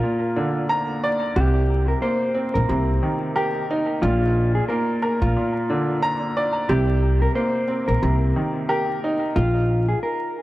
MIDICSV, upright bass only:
0, 0, Header, 1, 2, 480
1, 0, Start_track
1, 0, Key_signature, -3, "minor"
1, 0, Tempo, 666667
1, 976, Time_signature, 4, 2, 24, 8
1, 7503, End_track
2, 0, Start_track
2, 0, Title_t, "Upright bass"
2, 0, Program_c, 0, 32
2, 980, Note_on_c, 0, 36, 102
2, 1375, Note_off_c, 0, 36, 0
2, 1838, Note_on_c, 0, 34, 94
2, 1921, Note_off_c, 0, 34, 0
2, 1940, Note_on_c, 0, 36, 97
2, 2137, Note_off_c, 0, 36, 0
2, 2899, Note_on_c, 0, 34, 102
2, 3295, Note_off_c, 0, 34, 0
2, 3757, Note_on_c, 0, 34, 89
2, 3840, Note_off_c, 0, 34, 0
2, 4818, Note_on_c, 0, 36, 103
2, 5214, Note_off_c, 0, 36, 0
2, 5676, Note_on_c, 0, 34, 91
2, 5760, Note_off_c, 0, 34, 0
2, 5779, Note_on_c, 0, 36, 96
2, 5976, Note_off_c, 0, 36, 0
2, 6739, Note_on_c, 0, 34, 100
2, 7135, Note_off_c, 0, 34, 0
2, 7503, End_track
0, 0, End_of_file